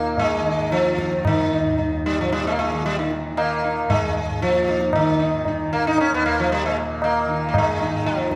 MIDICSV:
0, 0, Header, 1, 4, 480
1, 0, Start_track
1, 0, Tempo, 530973
1, 1127, Time_signature, 7, 2, 24, 8
1, 3998, Tempo, 518583
1, 7638, End_track
2, 0, Start_track
2, 0, Title_t, "Sitar"
2, 0, Program_c, 0, 104
2, 0, Note_on_c, 0, 58, 93
2, 0, Note_on_c, 0, 63, 38
2, 153, Note_off_c, 0, 63, 0
2, 175, Note_on_c, 0, 56, 86
2, 176, Note_off_c, 0, 58, 0
2, 410, Note_on_c, 0, 63, 37
2, 632, Note_off_c, 0, 63, 0
2, 647, Note_off_c, 0, 56, 0
2, 651, Note_on_c, 0, 53, 84
2, 1145, Note_off_c, 0, 53, 0
2, 1151, Note_on_c, 0, 51, 81
2, 1380, Note_on_c, 0, 63, 39
2, 1599, Note_off_c, 0, 63, 0
2, 1610, Note_on_c, 0, 63, 34
2, 1833, Note_off_c, 0, 63, 0
2, 1859, Note_off_c, 0, 51, 0
2, 1863, Note_on_c, 0, 55, 81
2, 1980, Note_off_c, 0, 55, 0
2, 1997, Note_on_c, 0, 53, 75
2, 2098, Note_off_c, 0, 53, 0
2, 2102, Note_on_c, 0, 55, 82
2, 2219, Note_off_c, 0, 55, 0
2, 2234, Note_on_c, 0, 56, 75
2, 2266, Note_on_c, 0, 58, 66
2, 2282, Note_off_c, 0, 56, 0
2, 2326, Note_off_c, 0, 58, 0
2, 2341, Note_on_c, 0, 56, 81
2, 2579, Note_off_c, 0, 56, 0
2, 2583, Note_on_c, 0, 55, 84
2, 2697, Note_off_c, 0, 55, 0
2, 2701, Note_on_c, 0, 51, 57
2, 2806, Note_off_c, 0, 51, 0
2, 3049, Note_on_c, 0, 58, 76
2, 3291, Note_on_c, 0, 63, 40
2, 3510, Note_off_c, 0, 63, 0
2, 3524, Note_on_c, 0, 56, 78
2, 3539, Note_off_c, 0, 58, 0
2, 3995, Note_off_c, 0, 56, 0
2, 3998, Note_on_c, 0, 53, 80
2, 4249, Note_on_c, 0, 63, 40
2, 4470, Note_off_c, 0, 63, 0
2, 4487, Note_off_c, 0, 53, 0
2, 4491, Note_on_c, 0, 51, 79
2, 4713, Note_on_c, 0, 63, 39
2, 4943, Note_off_c, 0, 63, 0
2, 4974, Note_on_c, 0, 63, 35
2, 5195, Note_off_c, 0, 63, 0
2, 5205, Note_on_c, 0, 58, 92
2, 5233, Note_off_c, 0, 51, 0
2, 5331, Note_off_c, 0, 58, 0
2, 5339, Note_on_c, 0, 63, 90
2, 5457, Note_off_c, 0, 63, 0
2, 5464, Note_on_c, 0, 61, 86
2, 5580, Note_off_c, 0, 61, 0
2, 5591, Note_on_c, 0, 59, 93
2, 5691, Note_off_c, 0, 59, 0
2, 5695, Note_on_c, 0, 58, 95
2, 5815, Note_off_c, 0, 58, 0
2, 5825, Note_on_c, 0, 53, 75
2, 5937, Note_off_c, 0, 53, 0
2, 5940, Note_on_c, 0, 55, 88
2, 6058, Note_off_c, 0, 55, 0
2, 6066, Note_on_c, 0, 56, 74
2, 6169, Note_off_c, 0, 56, 0
2, 6420, Note_on_c, 0, 58, 80
2, 6648, Note_on_c, 0, 63, 39
2, 6823, Note_off_c, 0, 58, 0
2, 6834, Note_on_c, 0, 58, 61
2, 6869, Note_off_c, 0, 63, 0
2, 6889, Note_off_c, 0, 58, 0
2, 6922, Note_on_c, 0, 56, 78
2, 7137, Note_on_c, 0, 63, 34
2, 7352, Note_off_c, 0, 63, 0
2, 7365, Note_off_c, 0, 56, 0
2, 7368, Note_on_c, 0, 53, 81
2, 7638, Note_off_c, 0, 53, 0
2, 7638, End_track
3, 0, Start_track
3, 0, Title_t, "Tanpura"
3, 0, Program_c, 1, 104
3, 0, Note_on_c, 1, 39, 56
3, 0, Note_on_c, 1, 46, 57
3, 0, Note_on_c, 1, 51, 55
3, 357, Note_off_c, 1, 51, 0
3, 360, Note_on_c, 1, 51, 51
3, 907, Note_off_c, 1, 51, 0
3, 907, Note_on_c, 1, 51, 54
3, 1422, Note_off_c, 1, 39, 0
3, 1426, Note_on_c, 1, 39, 64
3, 1927, Note_off_c, 1, 46, 0
3, 1931, Note_on_c, 1, 46, 61
3, 2460, Note_off_c, 1, 51, 0
3, 2460, Note_on_c, 1, 51, 58
3, 2994, Note_off_c, 1, 51, 0
3, 2994, Note_on_c, 1, 51, 58
3, 3494, Note_off_c, 1, 39, 0
3, 3497, Note_on_c, 1, 39, 60
3, 4010, Note_off_c, 1, 46, 0
3, 4013, Note_on_c, 1, 46, 62
3, 4529, Note_off_c, 1, 51, 0
3, 4529, Note_on_c, 1, 51, 60
3, 5051, Note_off_c, 1, 51, 0
3, 5051, Note_on_c, 1, 51, 57
3, 5571, Note_off_c, 1, 39, 0
3, 5575, Note_on_c, 1, 39, 57
3, 6094, Note_off_c, 1, 46, 0
3, 6098, Note_on_c, 1, 46, 62
3, 6613, Note_off_c, 1, 51, 0
3, 6613, Note_on_c, 1, 51, 62
3, 7136, Note_off_c, 1, 51, 0
3, 7136, Note_on_c, 1, 51, 68
3, 7638, Note_off_c, 1, 39, 0
3, 7638, Note_off_c, 1, 46, 0
3, 7638, Note_off_c, 1, 51, 0
3, 7638, End_track
4, 0, Start_track
4, 0, Title_t, "Tabla"
4, 156, Note_on_c, 9, 63, 81
4, 156, Note_on_c, 9, 64, 70
4, 247, Note_off_c, 9, 63, 0
4, 247, Note_off_c, 9, 64, 0
4, 645, Note_on_c, 9, 62, 66
4, 736, Note_off_c, 9, 62, 0
4, 769, Note_on_c, 9, 62, 61
4, 860, Note_off_c, 9, 62, 0
4, 890, Note_on_c, 9, 37, 58
4, 981, Note_off_c, 9, 37, 0
4, 1009, Note_on_c, 9, 62, 56
4, 1099, Note_off_c, 9, 62, 0
4, 1128, Note_on_c, 9, 60, 93
4, 1128, Note_on_c, 9, 64, 75
4, 1218, Note_off_c, 9, 60, 0
4, 1218, Note_off_c, 9, 64, 0
4, 1612, Note_on_c, 9, 63, 74
4, 1612, Note_on_c, 9, 64, 71
4, 1702, Note_off_c, 9, 63, 0
4, 1702, Note_off_c, 9, 64, 0
4, 2101, Note_on_c, 9, 62, 79
4, 2191, Note_off_c, 9, 62, 0
4, 2216, Note_on_c, 9, 62, 57
4, 2306, Note_off_c, 9, 62, 0
4, 2340, Note_on_c, 9, 37, 49
4, 2430, Note_off_c, 9, 37, 0
4, 2461, Note_on_c, 9, 62, 57
4, 2552, Note_off_c, 9, 62, 0
4, 2577, Note_on_c, 9, 62, 65
4, 2667, Note_off_c, 9, 62, 0
4, 2810, Note_on_c, 9, 62, 62
4, 2900, Note_off_c, 9, 62, 0
4, 3054, Note_on_c, 9, 60, 81
4, 3145, Note_off_c, 9, 60, 0
4, 3524, Note_on_c, 9, 63, 86
4, 3524, Note_on_c, 9, 64, 74
4, 3615, Note_off_c, 9, 63, 0
4, 3615, Note_off_c, 9, 64, 0
4, 3989, Note_on_c, 9, 62, 66
4, 4081, Note_off_c, 9, 62, 0
4, 4115, Note_on_c, 9, 62, 59
4, 4207, Note_off_c, 9, 62, 0
4, 4237, Note_on_c, 9, 37, 56
4, 4329, Note_off_c, 9, 37, 0
4, 4353, Note_on_c, 9, 62, 63
4, 4446, Note_off_c, 9, 62, 0
4, 4466, Note_on_c, 9, 60, 95
4, 4466, Note_on_c, 9, 64, 75
4, 4559, Note_off_c, 9, 60, 0
4, 4559, Note_off_c, 9, 64, 0
4, 4951, Note_on_c, 9, 63, 74
4, 4951, Note_on_c, 9, 64, 68
4, 5043, Note_off_c, 9, 63, 0
4, 5043, Note_off_c, 9, 64, 0
4, 5441, Note_on_c, 9, 60, 74
4, 5534, Note_off_c, 9, 60, 0
4, 5919, Note_on_c, 9, 60, 76
4, 6011, Note_off_c, 9, 60, 0
4, 6400, Note_on_c, 9, 60, 81
4, 6493, Note_off_c, 9, 60, 0
4, 6882, Note_on_c, 9, 60, 85
4, 6882, Note_on_c, 9, 64, 78
4, 6975, Note_off_c, 9, 60, 0
4, 6975, Note_off_c, 9, 64, 0
4, 7116, Note_on_c, 9, 62, 63
4, 7208, Note_off_c, 9, 62, 0
4, 7356, Note_on_c, 9, 62, 63
4, 7449, Note_off_c, 9, 62, 0
4, 7477, Note_on_c, 9, 62, 63
4, 7569, Note_off_c, 9, 62, 0
4, 7600, Note_on_c, 9, 37, 55
4, 7638, Note_off_c, 9, 37, 0
4, 7638, End_track
0, 0, End_of_file